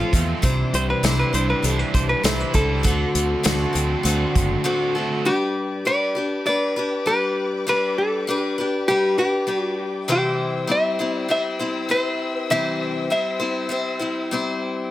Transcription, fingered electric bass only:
0.13 0.32 E2 medium
0.43 0.62 C2 medium
0.73 0.92 C2 medium
1.03 1.22 C2 medium
1.33 1.53 C2 medium
1.63 1.82 C2 loud
1.94 2.13 C2 medium
2.24 2.43 C2 medium
2.55 2.85 C#2 medium
2.85 3.04 D2 loud
3.15 3.34 D2 loud
3.45 3.64 D2 medium
3.75 3.94 D2 medium
4.04 4.24 D2 medium
4.35 4.55 F#1 medium

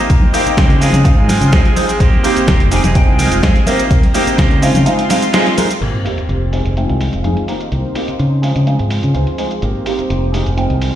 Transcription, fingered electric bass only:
0.10 0.20 C2 medium
0.46 muted fingered electric bass stroke soft
0.57 0.90 C#3 loud
0.94 1.13 C#3 medium
1.17 1.37 G#2 medium
1.41 1.51 C#3 medium
1.53 1.63 C#2 medium
2.00 2.11 G#1 medium
2.37 muted fingered electric bass stroke soft
2.48 2.81 F1 loud
2.84 3.04 F1 medium
3.08 3.28 C2 medium
3.32 3.41 F1 medium
3.43 3.54 F2 medium
3.91 4.01 C2 medium
4.27 muted fingered electric bass stroke soft
4.38 4.71 C#3 loud
4.74 4.86 C#3 medium
5.81 5.92 G#1 medium
6.18 muted fingered electric bass stroke soft
6.29 6.62 F1 medium
6.65 6.85 F1 medium
6.90 7.09 C2 medium
7.13 7.22 F1 medium
7.25 7.35 F2 medium
7.72 7.82 C2 medium
8.08 muted fingered electric bass stroke soft
8.20 8.52 C#3 medium
8.56 8.75 C#3 medium
8.80 8.99 G#2 medium
9.04 9.13 C#3 medium
9.15 9.25 C#2 medium
9.62 9.73 G#1 medium
9.99 muted fingered electric bass stroke soft
10.10 10.43 F1 medium
10.47 10.66 F1 medium
10.70 10.89 C2 medium

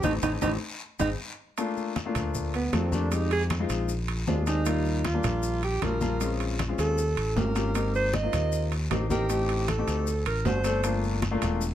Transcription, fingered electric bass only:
0.03 0.18 A1 loud
0.22 0.37 A1 loud
0.42 0.56 A1 loud
1.00 1.14 G#1 loud
2.15 2.69 D2 medium
2.73 3.64 F2 medium
3.69 4.24 A#1 medium
4.28 5.18 D#2 loud
5.24 5.78 A#1 medium
5.82 6.73 A#1 medium
6.78 7.14 D#2 medium
7.17 7.35 A1 medium
7.36 8.27 G#1 medium
8.33 8.87 D#2 medium
8.91 9.82 A1 loud
9.88 10.23 D2 loud
10.26 10.44 A1 medium
10.45 11.36 G1 medium
11.42 11.74 E1 medium

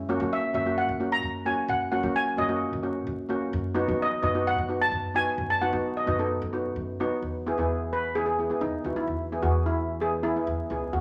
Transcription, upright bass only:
0.00 0.18 F#2 medium
0.20 0.52 F#3 medium
0.54 0.87 F#2 medium
0.89 1.21 F#2 medium
1.23 1.45 F#2 medium
1.68 2.01 F#2 medium
2.03 2.36 F#3 medium
2.38 2.71 F#2 medium
2.73 3.05 F#2 medium
3.07 3.29 F#2 medium
3.53 3.86 F#2 loud
3.88 4.21 F#3 medium
4.23 4.55 F#2 medium
4.58 4.90 F#2 medium
4.92 5.13 F#2 medium
5.38 5.71 F#2 loud
5.73 6.05 F#3 medium
6.07 6.40 F#2 medium
6.42 6.74 F#2 medium
6.76 6.98 F#2 medium
7.22 7.55 E2 medium
7.58 8.46 E2 medium
8.61 8.72 E2 medium
8.84 9.07 C#2 medium
9.07 9.41 E2 medium
9.43 10.32 E2 medium
10.47 10.58 E2 medium
10.70 10.92 C#2 medium
10.93 11.01 D#2 medium

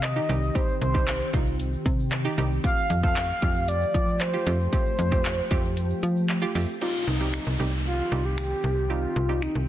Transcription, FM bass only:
0.00 0.19 C3 medium
0.29 0.50 C2 medium
0.81 1.24 C2 medium
1.34 1.76 C2 medium
1.86 2.28 C3 medium
2.38 2.59 C2 medium
2.90 3.32 F2 medium
3.42 3.85 F2 medium
3.94 4.37 F3 medium
4.47 4.68 F2 loud
4.99 5.41 F2 loud
5.51 5.93 F2 medium
6.03 6.45 F3 medium
6.55 6.66 F2 medium
7.07 7.39 C2 medium
7.47 7.57 C2 medium
7.60 8.02 C2 medium
8.12 8.54 C2 medium
8.64 9.06 C2 medium
9.16 9.48 C2 medium
9.55 9.66 C2 medium

